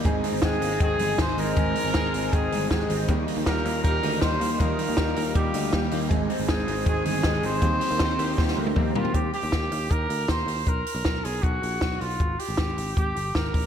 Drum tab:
RD |x---x---x---x---|x---x---x---x---|x---x---x---x---|x---x---x---x---|
HH |p-o-p-o-p-o-p-o-|p-o-p-o-p-o---o-|p-o---o-p-o---o-|--o---o-p-o---o-|
SD |----o-------o---|----o-------o---|----o-------o---|----o-------o---|
T1 |----------------|----------------|----------------|----------------|
T2 |----------------|----------------|----------------|----------------|
FT |----------------|----------------|----------------|----------------|
BD |o---o---o---o---|o---o---o---o---|o---o---o---o---|o---o---o---o---|

RD |x---x---x---x---|x---x-----------|----------------|----------------|
HH |p-o---o---o-p-o-|p-o---o---------|x-o-x-o-x-o-x-o-|x-o-x-o-x-o---o-|
SD |----o-------o---|----o---oo------|----o-------o---|----o-------o---|
T1 |----------------|-----------o----|----------------|----------------|
T2 |----------------|------------o---|----------------|----------------|
FT |----------------|--------------oo|----------------|----------------|
BD |o---o---o---o---|o---o---o---o---|o---o---o---o---|o---o---o---o---|

RD |----------------|
HH |x-o-x-o-x-o-x-o-|
SD |----o-------o---|
T1 |----------------|
T2 |----------------|
FT |----------------|
BD |o---o---o---o-o-|